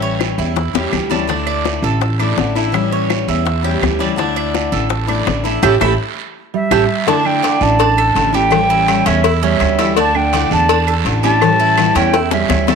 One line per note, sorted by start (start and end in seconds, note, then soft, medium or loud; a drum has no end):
0.00 0.32 A1 medium
0.00 0.55 E3 medium
0.00 0.55 G3 medium
0.00 0.55 C#4 medium
0.00 0.56 E4 medium
0.00 0.37 C#5 medium
0.20 high bongo medium
0.20 short guiro medium
0.20 claves medium
0.38 0.72 E2 loud
0.38 0.74 E4 medium
0.38 high bongo soft
0.38 short guiro medium
0.56 muted steel-string acoustic guitar stroke medium
0.56 high bongo medium
0.56 long guiro medium
0.74 0.91 E2 medium
0.74 0.91 G3 medium
0.74 0.92 C#4 medium
0.74 0.92 E4 medium
0.74 1.10 G4 medium
0.74 low bongo medium
0.92 1.77 D2 medium
0.92 1.10 E3 soft
0.92 1.10 G3 soft
0.92 1.10 C#4 medium
0.92 1.08 E4 medium
0.92 low bongo medium
0.92 short guiro medium
0.92 claves medium
1.10 1.29 G3 soft
1.10 1.28 C#4 medium
1.10 1.28 D4 medium
1.10 1.28 E4 medium
1.10 low bongo medium
1.10 short guiro medium
1.27 2.00 D3 medium
1.27 2.01 A3 medium
1.27 1.46 D4 medium
1.27 2.01 D4 medium
1.27 2.02 E4 medium
1.27 high bongo medium
1.27 long guiro medium
1.47 1.82 D5 medium
1.47 claves medium
1.65 high bongo medium
1.65 short guiro medium
1.82 2.33 A1 medium
1.82 2.19 A4 medium
1.82 short guiro medium
2.01 muted steel-string acoustic guitar stroke medium
2.01 high bongo medium
2.01 long guiro medium
2.19 2.36 A3 medium
2.19 2.37 D4 medium
2.19 2.37 E4 medium
2.19 2.55 D5 medium
2.19 claves medium
2.37 3.22 A1 medium
2.37 2.55 D3 soft
2.37 2.55 A3 medium
2.37 2.55 D4 soft
2.37 2.54 E4 medium
2.37 high bongo medium
2.37 low bongo medium
2.37 short guiro medium
2.55 2.73 A3 soft
2.55 2.73 D4 medium
2.55 2.73 E4 medium
2.55 2.91 E4 medium
2.55 short guiro medium
2.72 3.45 E3 medium
2.72 3.44 G3 medium
2.72 3.45 C#4 medium
2.72 3.46 E4 medium
2.72 high bongo medium
2.72 long guiro medium
2.72 claves medium
2.92 3.27 C#5 medium
3.10 high bongo medium
3.10 short guiro medium
3.10 claves medium
3.28 3.78 E2 medium
3.28 3.63 E4 medium
3.28 high bongo soft
3.28 short guiro medium
3.45 muted steel-string acoustic guitar stroke medium
3.45 high bongo medium
3.45 long guiro medium
3.63 3.80 G3 medium
3.63 3.81 C#4 medium
3.63 3.81 E4 medium
3.63 3.99 G4 medium
3.63 high bongo soft
3.81 4.67 D2 medium
3.81 3.99 E3 soft
3.81 3.99 G3 soft
3.81 3.99 C#4 medium
3.81 3.98 E4 medium
3.81 high bongo medium
3.81 low bongo medium
3.81 short guiro medium
3.81 claves medium
3.99 4.17 G3 medium
3.99 4.17 C#4 medium
3.99 4.17 D4 medium
3.99 4.17 E4 medium
3.99 high bongo soft
3.99 short guiro medium
4.16 4.88 D3 medium
4.16 4.89 A3 medium
4.16 4.36 D4 medium
4.16 4.89 D4 medium
4.16 4.90 E4 medium
4.16 high bongo medium
4.16 long guiro medium
4.36 4.71 D5 medium
4.36 claves medium
4.54 high bongo medium
4.54 short guiro medium
4.72 5.23 A1 loud
4.72 5.07 A4 medium
4.72 short guiro medium
4.89 muted steel-string acoustic guitar stroke medium
4.89 high bongo medium
4.89 long guiro medium
5.07 5.25 A3 medium
5.07 5.25 D4 medium
5.07 5.25 E4 medium
5.07 5.44 D5 medium
5.07 claves medium
5.25 5.60 A1 medium
5.25 5.43 D3 medium
5.25 5.44 A3 soft
5.25 5.43 D4 medium
5.25 5.42 E4 soft
5.25 high bongo medium
5.25 low bongo medium
5.25 short guiro medium
5.44 5.62 A3 medium
5.44 5.62 D4 medium
5.44 5.61 E4 medium
5.44 5.62 E4 medium
5.44 short guiro medium
5.62 5.76 A1 loud
5.62 5.74 A3 loud
5.62 5.74 C#4 loud
5.62 5.74 E4 medium
5.62 5.75 E4 medium
5.62 5.75 G4 loud
5.62 5.75 A4 medium
5.62 high bongo medium
5.62 long guiro loud
5.62 claves medium
5.80 5.94 A1 medium
5.80 5.93 A3 medium
5.80 5.93 C#4 loud
5.80 5.93 E4 medium
5.80 5.93 G4 medium
5.80 5.93 A4 medium
5.80 high bongo medium
5.80 long guiro medium
5.80 claves medium
6.54 7.04 G3 medium
6.54 7.09 E5 loud
6.71 6.85 A1 medium
6.71 6.83 A3 loud
6.71 6.83 C#4 loud
6.71 6.83 E4 medium
6.71 6.83 G4 medium
6.71 6.83 A4 medium
6.71 high bongo loud
6.71 long guiro medium
6.71 claves medium
7.07 7.41 D3 medium
7.07 7.42 A3 medium
7.07 7.43 D4 medium
7.07 7.24 D4 medium
7.07 7.43 E4 medium
7.07 7.28 A5 loud
7.07 cowbell loud
7.07 long guiro medium
7.25 7.61 D4 medium
7.25 7.64 G5 loud
7.25 claves medium
7.42 7.78 D3 medium
7.42 7.78 A3 medium
7.42 7.78 D4 medium
7.42 7.79 E4 medium
7.42 7.79 D5 medium
7.42 cowbell medium
7.42 short guiro medium
7.61 8.12 A1 loud
7.61 8.34 D4 medium
7.61 8.37 A5 loud
7.61 short guiro medium
7.79 7.98 D4 medium
7.79 muted steel-string acoustic guitar stroke medium
7.79 cowbell loud
7.79 long guiro medium
7.98 8.33 A4 medium
7.98 claves medium
8.15 9.00 A1 medium
8.15 8.33 D3 medium
8.15 8.33 A3 medium
8.15 8.33 D4 medium
8.15 8.31 E4 medium
8.15 cowbell medium
8.15 short guiro medium
8.32 8.51 A3 medium
8.32 9.07 C#4 medium
8.32 8.51 D4 medium
8.32 8.51 E4 medium
8.32 8.69 G4 medium
8.32 9.08 G5 loud
8.32 short guiro medium
8.50 8.86 E3 medium
8.50 8.87 G3 medium
8.50 8.87 C#4 medium
8.50 8.88 E4 medium
8.50 cowbell loud
8.50 long guiro medium
8.50 claves medium
8.70 9.05 E4 medium
8.87 9.22 E3 medium
8.87 9.23 G3 medium
8.87 9.23 C#4 medium
8.87 9.23 E4 medium
8.87 cowbell medium
8.87 short guiro medium
8.87 claves medium
9.06 9.57 E2 loud
9.06 9.42 G3 medium
9.06 9.24 C#4 medium
9.06 9.43 E5 loud
9.06 cowbell medium
9.06 short guiro medium
9.24 9.42 E4 medium
9.24 muted steel-string acoustic guitar stroke medium
9.24 cowbell loud
9.24 long guiro medium
9.43 9.93 G3 medium
9.43 9.78 C#4 medium
9.43 9.93 E5 medium
9.60 10.45 D2 medium
9.60 9.78 E3 medium
9.60 9.78 G3 medium
9.60 9.78 C#4 medium
9.60 9.77 E4 medium
9.60 cowbell medium
9.60 short guiro medium
9.60 claves medium
9.79 9.97 G3 medium
9.79 9.96 C#4 medium
9.79 9.96 E4 medium
9.79 9.96 A4 medium
9.79 cowbell medium
9.79 short guiro medium
9.96 10.32 D3 medium
9.96 10.32 A3 medium
9.96 10.32 D4 medium
9.96 10.14 D4 medium
9.96 10.32 D4 medium
9.96 10.33 E4 medium
9.96 10.18 A5 loud
9.96 cowbell loud
9.96 long guiro medium
10.15 10.51 D4 medium
10.15 10.52 G5 loud
10.15 claves medium
10.33 10.68 D3 medium
10.33 10.68 A3 medium
10.33 10.69 D4 medium
10.33 10.69 E4 medium
10.33 10.68 D5 medium
10.33 cowbell medium
10.33 short guiro medium
10.51 11.01 E2 loud
10.51 10.94 D4 medium
10.51 10.94 A5 loud
10.51 short guiro medium
10.69 10.87 D4 medium
10.69 muted steel-string acoustic guitar stroke medium
10.69 cowbell loud
10.69 long guiro medium
10.88 11.23 A4 medium
10.88 claves medium
11.05 11.90 A1 medium
11.05 11.22 D3 soft
11.05 11.23 A3 medium
11.05 11.23 D4 medium
11.05 11.22 E4 medium
11.05 cowbell medium
11.05 short guiro medium
11.23 11.42 A3 medium
11.23 11.92 C#4 medium
11.23 11.41 D4 medium
11.23 11.41 E4 medium
11.23 11.59 G4 medium
11.23 11.98 A5 loud
11.23 short guiro medium
11.41 11.76 E3 medium
11.41 11.77 G3 medium
11.41 11.77 C#4 medium
11.41 11.78 E4 medium
11.41 cowbell medium
11.41 long guiro medium
11.41 claves medium
11.60 11.95 E4 medium
11.77 12.13 E3 medium
11.77 12.13 G3 medium
11.77 12.13 C#4 medium
11.77 12.14 E4 medium
11.77 cowbell medium
11.77 short guiro medium
11.77 claves medium
11.95 12.46 E2 loud
11.95 12.13 C#4 medium
11.95 12.33 C#4 medium
11.95 12.32 G5 loud
11.95 cowbell medium
11.95 short guiro medium
12.14 12.31 E4 medium
12.14 muted steel-string acoustic guitar stroke medium
12.14 cowbell loud
12.14 high bongo medium
12.14 long guiro medium
12.31 12.75 G3 medium
12.31 12.67 C#4 medium
12.31 12.75 E5 loud
12.31 low bongo medium
12.48 12.75 D2 medium
12.48 12.66 E3 medium
12.48 12.67 G3 medium
12.48 12.67 C#4 medium
12.48 12.66 E4 medium
12.48 cowbell medium
12.48 low bongo medium
12.48 short guiro medium
12.48 claves medium
12.67 12.75 G3 medium
12.67 12.75 C#4 medium
12.67 12.75 E4 medium
12.67 12.75 A4 medium
12.67 cowbell medium
12.67 low bongo medium
12.67 short guiro medium